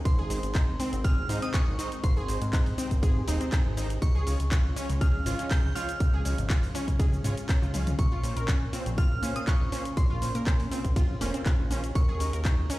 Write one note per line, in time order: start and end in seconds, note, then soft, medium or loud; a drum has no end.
0.00 3.98 D#3 medium
0.05 0.39 G#1 loud
0.05 2.02 G#3 medium
0.05 3.98 C4 loud
0.05 1.07 C6 medium
0.05 kick loud
0.05 closed hi-hat soft
0.05 ride medium
0.05 shaker soft
0.18 0.25 G#4 loud
0.30 0.41 G#2 medium
0.30 0.41 G#3 medium
0.30 0.41 C4 medium
0.30 0.41 D#4 medium
0.30 0.41 C5 loud
0.30 open hi-hat loud
0.30 shaker medium
0.43 0.76 G#1 medium
0.43 closed hi-hat medium
0.43 shaker soft
0.55 0.60 D#4 loud
0.55 kick loud
0.55 clap loud
0.55 closed hi-hat medium
0.55 ride medium
0.55 shaker soft
0.80 0.96 G#2 medium
0.80 0.96 G#3 medium
0.80 0.96 C4 medium
0.80 0.92 C4 loud
0.80 0.96 D#4 medium
0.80 0.96 C5 medium
0.80 open hi-hat loud
0.80 shaker medium
0.93 1.26 G#1 medium
0.93 closed hi-hat medium
0.93 shaker soft
1.04 1.12 G#4 loud
1.04 1.44 F6 loud
1.04 kick loud
1.04 closed hi-hat medium
1.04 ride medium
1.04 shaker soft
1.29 1.40 G#2 medium
1.29 1.76 G#2 loud
1.29 1.76 G#3 medium
1.29 1.76 C4 medium
1.29 1.76 D#4 medium
1.29 1.37 D#4 loud
1.29 1.76 C5 loud
1.29 open hi-hat loud
1.29 shaker medium
1.42 1.49 C4 medium
1.42 1.54 D#6 loud
1.42 closed hi-hat medium
1.42 shaker soft
1.54 1.59 G#4 loud
1.54 2.00 C#6 medium
1.54 kick loud
1.54 clap loud
1.54 closed hi-hat soft
1.54 ride medium
1.54 shaker soft
1.67 1.77 G#1 loud
1.79 1.90 G#2 loud
1.79 1.90 G#3 medium
1.79 1.90 C4 medium
1.79 1.91 D#4 loud
1.79 1.90 D#4 medium
1.79 1.90 C5 loud
1.79 open hi-hat loud
1.79 shaker medium
1.92 closed hi-hat medium
1.92 shaker soft
2.04 2.37 G#1 loud
2.04 4.00 G4 medium
2.04 3.73 C6 medium
2.04 kick loud
2.04 closed hi-hat medium
2.04 ride medium
2.04 shaker soft
2.17 2.24 G#4 loud
2.28 2.39 G#2 loud
2.28 2.39 G#3 medium
2.28 2.39 C4 medium
2.28 2.39 D#4 medium
2.28 2.39 C5 loud
2.28 open hi-hat loud
2.28 shaker medium
2.42 2.74 G#2 loud
2.42 closed hi-hat medium
2.42 shaker soft
2.53 2.58 D#4 loud
2.53 kick loud
2.53 clap loud
2.53 closed hi-hat medium
2.53 ride medium
2.53 shaker soft
2.66 open hi-hat medium
2.78 2.95 G#2 medium
2.78 2.95 G#3 medium
2.78 2.95 C4 medium
2.78 2.90 C4 loud
2.78 2.95 D#4 medium
2.78 2.95 C5 loud
2.78 open hi-hat loud
2.78 shaker medium
2.91 3.24 G#1 medium
2.91 kick medium
2.91 closed hi-hat medium
2.91 shaker soft
3.03 3.11 G#4 loud
3.03 kick loud
3.03 closed hi-hat medium
3.03 ride medium
3.03 shaker soft
3.28 3.38 D#1 loud
3.28 3.74 G#2 loud
3.28 3.74 G#3 medium
3.28 3.74 C4 medium
3.28 3.36 D#4 loud
3.28 3.74 D#4 medium
3.28 3.74 C5 loud
3.28 open hi-hat loud
3.28 shaker medium
3.41 3.48 C4 medium
3.41 closed hi-hat medium
3.41 shaker soft
3.52 3.57 G#4 loud
3.52 kick loud
3.52 clap loud
3.52 closed hi-hat soft
3.52 ride medium
3.52 shaker soft
3.65 3.98 G#1 medium
3.77 3.88 C#3 loud
3.77 3.88 G#3 medium
3.77 3.88 C4 loud
3.77 3.89 D#4 loud
3.77 3.88 D#4 medium
3.77 3.88 C5 loud
3.77 open hi-hat loud
3.77 shaker medium
3.90 closed hi-hat medium
3.90 shaker soft
4.02 4.36 C#2 loud
4.02 7.95 F3 medium
4.02 7.95 G#3 medium
4.02 5.98 C#4 loud
4.02 5.04 C#6 medium
4.02 kick loud
4.02 closed hi-hat medium
4.02 ride medium
4.02 shaker soft
4.15 4.22 G#4 loud
4.27 4.38 C#3 medium
4.27 4.38 G#3 medium
4.27 4.38 C#4 medium
4.27 4.38 F4 medium
4.27 4.38 C#5 loud
4.27 open hi-hat loud
4.27 shaker medium
4.40 4.73 C#2 medium
4.40 closed hi-hat medium
4.40 shaker soft
4.52 4.56 F4 loud
4.52 kick loud
4.52 clap loud
4.52 closed hi-hat medium
4.52 ride medium
4.52 shaker soft
4.76 4.93 C#3 medium
4.76 4.93 G#3 medium
4.76 4.88 C#4 loud
4.76 4.93 C#4 medium
4.76 4.93 F4 medium
4.76 4.93 C#5 medium
4.76 open hi-hat loud
4.76 shaker medium
4.89 5.22 C#2 medium
4.89 closed hi-hat medium
4.89 shaker soft
5.01 5.09 G#4 loud
5.01 5.52 F6 loud
5.01 kick loud
5.01 closed hi-hat medium
5.01 ride medium
5.01 shaker soft
5.26 5.36 G#1 medium
5.26 5.73 C#3 loud
5.26 5.73 G#3 medium
5.26 5.73 C#4 medium
5.26 5.34 F4 loud
5.26 5.73 F4 medium
5.26 5.73 C#5 loud
5.26 open hi-hat loud
5.26 shaker medium
5.39 5.46 C#4 medium
5.39 closed hi-hat medium
5.39 shaker soft
5.51 5.56 G#4 loud
5.51 5.76 G6 loud
5.51 kick loud
5.51 clap loud
5.51 closed hi-hat medium
5.51 ride medium
5.51 shaker soft
5.64 5.73 C#2 medium
5.75 5.86 C#3 loud
5.75 5.86 G#3 loud
5.75 5.86 C#4 medium
5.75 5.86 F4 loud
5.75 5.87 F4 loud
5.75 5.86 C#5 loud
5.75 7.45 F6 loud
5.75 open hi-hat loud
5.75 shaker medium
5.89 closed hi-hat medium
5.89 shaker soft
6.00 6.34 C#2 loud
6.00 9.93 C#4 medium
6.00 kick loud
6.00 closed hi-hat medium
6.00 ride medium
6.00 shaker soft
6.14 6.21 G#4 loud
6.25 6.36 C#3 loud
6.25 6.36 G#3 medium
6.25 6.36 C#4 medium
6.25 6.36 F4 medium
6.25 6.36 C#5 loud
6.25 open hi-hat loud
6.25 shaker medium
6.38 6.71 G#1 loud
6.38 closed hi-hat medium
6.38 shaker soft
6.50 6.55 F4 loud
6.50 kick loud
6.50 clap loud
6.50 closed hi-hat medium
6.50 ride medium
6.50 shaker soft
6.63 open hi-hat medium
6.63 shaker soft
6.75 6.92 C#3 medium
6.75 6.92 G#3 medium
6.75 6.87 C#4 loud
6.75 6.92 C#4 medium
6.75 6.92 F4 medium
6.75 6.92 C#5 medium
6.75 open hi-hat loud
6.75 shaker medium
6.88 7.21 C#2 medium
6.88 kick medium
6.88 closed hi-hat medium
6.88 shaker soft
7.00 7.07 G#4 loud
7.00 kick loud
7.00 closed hi-hat medium
7.00 ride medium
7.00 shaker soft
7.13 shaker soft
7.24 7.35 G#1 loud
7.24 7.35 C#3 medium
7.24 7.35 G#3 medium
7.24 7.35 C#4 medium
7.24 7.35 F4 medium
7.24 7.35 C#5 loud
7.24 open hi-hat loud
7.24 shaker medium
7.37 closed hi-hat medium
7.37 shaker soft
7.49 7.57 C#5 medium
7.49 kick loud
7.49 clap loud
7.49 closed hi-hat medium
7.49 ride medium
7.49 shaker soft
7.62 7.95 C#2 medium
7.62 7.69 F4 medium
7.62 shaker soft
7.74 7.91 G#3 medium
7.74 7.79 C#4 medium
7.74 7.91 C#4 medium
7.74 7.91 F4 medium
7.74 7.91 F5 loud
7.74 open hi-hat loud
7.74 high tom medium
7.74 shaker medium
7.87 closed hi-hat medium
7.87 mid tom medium
7.87 shaker soft
7.99 8.32 A#1 loud
7.99 11.91 C#3 medium
7.99 11.91 A#3 medium
7.99 9.01 C#6 medium
7.99 kick loud
7.99 closed hi-hat medium
7.99 ride medium
7.99 shaker soft
8.12 8.19 F4 loud
8.23 8.34 A#2 medium
8.23 8.34 A#3 medium
8.23 8.34 C#4 medium
8.23 8.34 F4 medium
8.23 8.34 C5 loud
8.23 open hi-hat loud
8.23 shaker medium
8.37 8.69 A#1 medium
8.37 8.41 A#4 medium
8.37 closed hi-hat medium
8.37 shaker soft
8.48 8.53 C#4 loud
8.48 kick loud
8.48 clap loud
8.48 closed hi-hat medium
8.48 ride medium
8.48 shaker soft
8.73 8.90 A#2 medium
8.73 8.90 A#3 medium
8.73 8.85 C4 loud
8.73 8.90 C#4 medium
8.73 8.90 F4 medium
8.73 8.90 C5 medium
8.73 open hi-hat loud
8.73 shaker medium
8.86 9.19 A#1 medium
8.86 closed hi-hat medium
8.86 shaker soft
8.98 9.06 F4 loud
8.98 9.37 F6 loud
8.98 kick loud
8.98 closed hi-hat medium
8.98 ride medium
8.98 shaker soft
9.23 9.33 A#2 medium
9.23 9.69 A#2 loud
9.23 9.69 A#3 medium
9.23 9.69 C#4 medium
9.23 9.31 C#4 loud
9.23 9.69 F4 medium
9.23 9.69 C5 loud
9.23 open hi-hat loud
9.23 shaker medium
9.36 9.43 C4 medium
9.36 9.48 D#6 loud
9.36 closed hi-hat medium
9.36 shaker soft
9.47 9.52 F4 loud
9.47 9.99 C#6 loud
9.47 kick loud
9.47 clap loud
9.47 closed hi-hat medium
9.47 ride medium
9.47 shaker soft
9.61 9.70 A#1 medium
9.72 9.83 A#2 loud
9.72 9.83 A#3 medium
9.72 9.83 C#4 loud
9.72 9.84 C#4 loud
9.72 9.83 F4 loud
9.72 9.83 C5 loud
9.72 open hi-hat loud
9.72 shaker medium
9.85 closed hi-hat medium
9.85 shaker soft
9.97 10.31 A#1 loud
9.97 11.93 C#4 medium
9.97 11.67 C6 medium
9.97 kick loud
9.97 closed hi-hat medium
9.97 ride medium
9.97 shaker soft
10.10 10.17 F4 loud
10.22 10.33 A#2 medium
10.22 10.33 A#3 medium
10.22 10.33 C#4 medium
10.22 10.33 F4 medium
10.22 10.33 C5 loud
10.22 open hi-hat loud
10.22 shaker medium
10.35 10.68 A#2 loud
10.35 10.39 A#4 medium
10.35 closed hi-hat medium
10.35 shaker soft
10.47 10.51 C#4 loud
10.47 kick loud
10.47 clap loud
10.47 closed hi-hat medium
10.47 ride medium
10.47 shaker soft
10.60 open hi-hat medium
10.71 10.88 A#2 medium
10.71 10.88 A#3 medium
10.71 10.83 C4 loud
10.71 10.88 C#4 medium
10.71 10.88 F4 medium
10.71 10.88 C5 loud
10.71 open hi-hat loud
10.71 shaker medium
10.85 11.17 A#1 medium
10.85 kick medium
10.85 closed hi-hat medium
10.85 shaker soft
10.96 11.04 F4 loud
10.96 kick loud
10.96 closed hi-hat medium
10.96 ride medium
10.96 shaker soft
11.21 11.32 F1 loud
11.21 11.68 A#2 medium
11.21 11.68 A#3 medium
11.21 11.29 C#4 loud
11.21 11.68 C#4 medium
11.21 11.68 F4 medium
11.21 11.68 C5 loud
11.21 open hi-hat loud
11.21 shaker medium
11.34 11.41 C4 medium
11.34 closed hi-hat medium
11.34 shaker soft
11.46 11.51 F4 loud
11.46 kick loud
11.46 clap loud
11.46 closed hi-hat medium
11.46 ride medium
11.46 shaker soft
11.59 11.92 A#1 medium
11.71 11.81 D#3 loud
11.71 11.81 A#3 loud
11.71 11.81 C#4 medium
11.71 11.82 C#4 loud
11.71 11.81 F4 loud
11.71 11.81 C5 loud
11.71 open hi-hat loud
11.71 shaker medium
11.84 closed hi-hat medium
11.84 shaker soft
11.95 12.29 D#2 loud
11.95 12.79 D#3 medium
11.95 12.79 A#3 medium
11.95 12.79 C#4 medium
11.95 12.79 F4 medium
11.95 12.79 G#4 medium
11.95 12.79 C#6 loud
11.95 kick loud
11.95 closed hi-hat medium
11.95 ride medium
11.95 shaker soft
12.09 12.16 G#4 loud
12.20 12.31 D#3 medium
12.20 12.31 G#3 medium
12.20 12.31 C#4 medium
12.20 12.31 D#4 medium
12.20 12.31 A#4 loud
12.20 open hi-hat loud
12.20 shaker medium
12.33 12.66 D#2 medium
12.33 12.38 A#4 medium
12.33 closed hi-hat medium
12.33 shaker soft
12.45 12.50 D#4 loud
12.45 kick loud
12.45 clap loud
12.45 closed hi-hat medium
12.45 ride medium
12.45 shaker soft
12.70 12.79 D#3 medium
12.70 12.79 G#3 medium
12.70 12.79 C#4 medium
12.70 12.79 C#4 loud
12.70 12.79 D#4 medium
12.70 12.79 A#4 medium
12.70 open hi-hat loud
12.70 shaker medium